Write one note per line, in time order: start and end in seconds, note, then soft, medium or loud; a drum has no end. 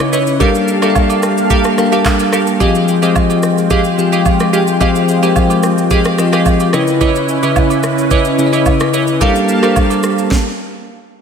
0.00 0.42 C#3 medium
0.00 0.38 C#4 medium
0.00 0.42 C#4 medium
0.00 0.42 D#4 medium
0.00 0.38 E4 medium
0.00 0.42 E4 medium
0.00 0.38 B4 medium
0.00 0.42 B4 medium
0.00 0.25 C#5 loud
0.00 0.38 C#5 medium
0.00 0.42 D#5 medium
0.00 0.42 E5 loud
0.00 cross-stick medium
0.00 high agogo medium
0.13 0.22 E4 medium
0.13 0.23 B4 medium
0.13 0.23 C#5 medium
0.13 0.23 D#5 medium
0.13 shaker loud
0.27 shaker medium
0.40 0.73 G3 loud
0.40 2.59 A#3 medium
0.40 0.74 D4 medium
0.40 0.50 G4 medium
0.40 2.58 G4 medium
0.40 0.50 A4 medium
0.40 0.74 A4 loud
0.40 0.50 A#4 medium
0.40 0.74 A#4 loud
0.40 2.58 F5 medium
0.40 0.50 F5 loud
0.40 0.74 F5 loud
0.40 2.58 A5 medium
0.40 kick loud
0.40 high agogo medium
0.40 shaker medium
0.55 shaker soft
0.68 shaker medium
0.82 1.59 G3 medium
0.82 1.59 D4 medium
0.82 0.91 G4 medium
0.82 0.91 A4 medium
0.82 1.59 A4 medium
0.82 0.91 A#4 medium
0.82 1.59 A#4 medium
0.82 0.89 E5 medium
0.82 0.91 F5 medium
0.82 cross-stick medium
0.82 high agogo medium
0.82 shaker medium
0.90 1.63 F5 medium
0.95 kick loud
0.95 low woodblock medium
0.95 shaker medium
1.10 high agogo medium
1.10 shaker soft
1.23 cross-stick medium
1.23 shaker medium
1.38 shaker medium
1.50 1.60 G4 medium
1.50 1.60 A4 medium
1.50 1.60 A#4 medium
1.50 1.60 F5 loud
1.50 kick loud
1.50 high agogo medium
1.50 shaker medium
1.64 cross-stick medium
1.64 shaker medium
1.78 2.44 G3 medium
1.78 2.45 D4 medium
1.78 2.45 A4 medium
1.78 2.45 A#4 medium
1.78 2.45 F5 medium
1.78 cross-stick medium
1.78 shaker medium
1.92 2.01 G4 medium
1.92 2.01 A4 medium
1.92 2.01 A#4 medium
1.92 2.01 F5 medium
1.92 high agogo medium
1.92 shaker soft
2.05 kick medium
2.05 clap loud
2.05 low woodblock medium
2.05 shaker medium
2.19 high agogo medium
2.19 shaker medium
2.33 2.43 G4 medium
2.33 2.43 A4 medium
2.33 2.43 A#4 medium
2.33 2.43 F5 medium
2.33 cross-stick medium
2.33 shaker loud
2.47 shaker medium
2.60 2.94 F3 loud
2.60 6.69 G#3 medium
2.60 2.94 C4 medium
2.60 6.69 F4 medium
2.60 2.70 G4 medium
2.60 2.94 G4 medium
2.60 2.70 G#4 medium
2.60 2.94 G#4 loud
2.60 2.70 D#5 medium
2.60 2.94 D#5 loud
2.60 2.70 F5 loud
2.60 6.69 G5 medium
2.60 kick loud
2.60 high agogo medium
2.60 shaker medium
2.75 shaker soft
2.88 shaker medium
3.02 3.79 F3 medium
3.02 3.79 C4 medium
3.02 3.11 G4 medium
3.02 3.79 G4 medium
3.02 3.11 G#4 medium
3.02 3.80 G#4 medium
3.02 3.11 D#5 medium
3.02 3.80 D#5 loud
3.02 3.11 F5 medium
3.02 high agogo medium
3.02 shaker medium
3.16 kick loud
3.16 low woodblock medium
3.16 shaker medium
3.30 high agogo medium
3.30 shaker soft
3.43 cross-stick medium
3.43 shaker medium
3.58 shaker medium
3.70 3.80 G4 medium
3.70 3.80 G#4 medium
3.70 3.80 D#5 medium
3.70 3.81 F5 loud
3.70 kick loud
3.70 high agogo medium
3.70 shaker medium
3.84 shaker medium
3.98 4.64 F3 medium
3.98 4.65 C4 medium
3.98 4.65 G4 medium
3.98 4.65 G#4 medium
3.98 4.65 F5 medium
3.98 shaker medium
4.12 4.21 G4 medium
4.12 4.21 G#4 medium
4.12 4.21 D#5 medium
4.12 4.22 F5 medium
4.12 high agogo medium
4.12 shaker soft
4.26 kick medium
4.26 low woodblock medium
4.26 shaker medium
4.40 cross-stick medium
4.40 high agogo medium
4.40 shaker medium
4.53 4.63 G4 medium
4.53 4.63 G#4 medium
4.53 4.63 D#5 medium
4.53 4.63 F5 medium
4.53 shaker loud
4.67 shaker medium
4.80 5.14 F3 loud
4.80 5.14 C4 medium
4.80 4.90 G4 loud
4.80 5.14 G4 medium
4.80 4.90 G#4 medium
4.80 5.14 G#4 medium
4.80 4.91 D#5 medium
4.80 4.91 F5 loud
4.80 5.15 F5 loud
4.80 kick loud
4.80 high agogo medium
4.80 shaker medium
4.95 shaker medium
5.09 shaker medium
5.22 5.99 F3 medium
5.22 5.99 C4 medium
5.22 5.31 G4 medium
5.22 6.00 G4 medium
5.22 5.32 G#4 medium
5.22 6.00 G#4 medium
5.22 6.00 A#4 loud
5.22 5.32 D#5 medium
5.22 5.32 F5 medium
5.22 high agogo medium
5.22 shaker medium
5.36 kick loud
5.36 low woodblock medium
5.36 shaker medium
5.50 high agogo medium
5.50 shaker soft
5.63 cross-stick medium
5.63 shaker medium
5.78 shaker medium
5.91 6.00 G4 medium
5.91 6.01 G#4 medium
5.91 6.01 D#5 medium
5.91 6.01 F5 loud
5.91 kick loud
5.91 high agogo medium
5.91 shaker medium
6.05 cross-stick loud
6.05 shaker medium
6.18 6.73 F3 medium
6.18 6.73 C4 medium
6.18 6.74 G4 medium
6.18 6.74 G#4 medium
6.18 6.74 D#5 medium
6.18 cross-stick medium
6.18 shaker medium
6.32 6.42 G4 medium
6.32 6.42 G#4 medium
6.32 6.42 D#5 medium
6.32 6.42 F5 medium
6.32 cross-stick medium
6.32 high agogo medium
6.32 shaker soft
6.46 kick loud
6.46 low woodblock medium
6.46 shaker medium
6.60 high agogo medium
6.60 shaker medium
6.73 7.28 C#3 medium
6.73 7.29 C#4 medium
6.73 9.19 C#4 medium
6.73 6.83 E4 medium
6.73 9.19 E4 medium
6.73 7.29 E4 medium
6.73 9.19 B4 medium
6.73 6.83 B4 medium
6.73 7.29 B4 medium
6.73 6.83 C#5 medium
6.73 6.83 D#5 medium
6.73 7.29 D#5 loud
6.73 cross-stick loud
6.73 shaker loud
6.87 shaker medium
7.01 7.11 E4 loud
7.01 7.11 B4 medium
7.01 7.11 C#5 medium
7.01 7.11 D#5 loud
7.01 kick loud
7.01 high agogo medium
7.01 shaker medium
7.15 shaker soft
7.29 shaker medium
7.42 8.19 C#3 medium
7.42 8.20 C#4 medium
7.42 7.52 E4 medium
7.42 8.20 E4 medium
7.42 7.52 B4 medium
7.42 8.20 B4 medium
7.42 7.52 C#5 medium
7.42 7.52 D#5 medium
7.42 8.20 E5 loud
7.42 high agogo medium
7.42 shaker medium
7.56 kick loud
7.56 low woodblock medium
7.56 shaker medium
7.70 high agogo medium
7.70 shaker medium
7.83 cross-stick medium
7.83 shaker medium
7.98 shaker medium
8.11 8.21 E4 medium
8.11 8.21 B4 medium
8.11 8.21 C#5 medium
8.11 8.21 D#5 loud
8.11 kick loud
8.11 high agogo medium
8.11 shaker medium
8.25 shaker medium
8.38 9.05 C#3 medium
8.38 9.05 C#4 medium
8.38 9.05 E4 medium
8.38 9.06 B4 medium
8.38 8.46 C#5 medium
8.38 shaker loud
8.46 9.09 D#5 medium
8.53 8.62 E4 medium
8.53 8.62 B4 medium
8.53 8.62 C#5 medium
8.53 8.62 D#5 medium
8.53 high agogo medium
8.53 shaker soft
8.66 kick medium
8.66 low woodblock medium
8.66 shaker medium
8.80 cross-stick loud
8.80 high agogo medium
8.80 shaker medium
8.93 9.03 E4 medium
8.93 9.03 B4 medium
8.93 9.03 C#5 medium
8.93 9.03 D#5 medium
8.93 shaker loud
9.07 shaker medium
9.21 9.54 G3 loud
9.21 10.30 A#3 medium
9.21 9.54 D4 medium
9.21 9.31 G4 loud
9.21 10.30 G4 medium
9.21 9.31 A4 medium
9.21 9.55 A4 medium
9.21 9.31 A#4 medium
9.21 9.55 A#4 loud
9.21 10.30 F5 medium
9.21 9.31 F5 loud
9.21 9.55 F5 loud
9.21 10.30 A5 medium
9.21 kick loud
9.21 high agogo medium
9.21 shaker medium
9.36 shaker soft
9.49 shaker medium
9.62 10.31 G3 medium
9.62 10.31 D4 medium
9.62 9.72 G4 medium
9.62 9.72 A4 medium
9.62 10.31 A4 medium
9.62 9.72 A#4 medium
9.62 10.32 A#4 medium
9.62 10.32 C5 medium
9.62 9.72 F5 medium
9.62 cross-stick medium
9.62 high agogo medium
9.62 shaker medium
9.76 kick loud
9.76 low woodblock medium
9.76 shaker medium
9.90 high agogo medium
9.90 shaker medium
10.03 cross-stick medium
10.03 shaker medium
10.18 shaker medium
10.31 kick loud
10.31 snare medium